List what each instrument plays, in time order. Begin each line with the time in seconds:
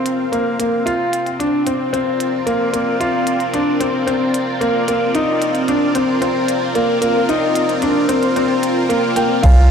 Already playing: grand piano C4, analog synth pad C4 F4 A#4 F5
0.06 closed hi-hat
0.32 grand piano A#3, closed hi-hat
0.59 grand piano A#3, closed hi-hat
0.86 grand piano F4, closed hi-hat
1.13 closed hi-hat
1.26 closed hi-hat
1.39 grand piano D4, analog synth pad F4 D5, closed hi-hat
1.67 grand piano C4, closed hi-hat
1.84 analog synth pad A#4
1.93 grand piano C4, closed hi-hat
2.20 closed hi-hat
2.46 grand piano A#3, closed hi-hat
2.73 grand piano A#3, closed hi-hat
3.00 grand piano F4, closed hi-hat
3.27 closed hi-hat
3.40 closed hi-hat
3.54 grand piano D4, closed hi-hat
3.81 grand piano C4, closed hi-hat
4.07 grand piano C4, closed hi-hat
4.34 closed hi-hat
4.61 grand piano A#3, closed hi-hat
4.88 grand piano A#3, closed hi-hat
5.15 grand piano D#4, closed hi-hat
5.42 closed hi-hat
5.55 closed hi-hat
5.68 grand piano D4, closed hi-hat
5.95 grand piano C4, closed hi-hat
6.22 grand piano C4, closed hi-hat
6.48 closed hi-hat
6.75 grand piano A#3, closed hi-hat
7.01 grand piano A#3, closed hi-hat
7.29 grand piano D#4, closed hi-hat
7.55 closed hi-hat
7.69 closed hi-hat
7.82 grand piano D4, closed hi-hat
8.09 grand piano C4, closed hi-hat
8.23 closed hi-hat
8.36 grand piano C4, closed hi-hat
8.63 closed hi-hat
8.89 grand piano A#3, closed hi-hat
9.16 grand piano A#3, felt piano G5, closed hi-hat
9.43 analog synth bass C2, grand piano F4, felt piano F5, kick, closed hi-hat, crash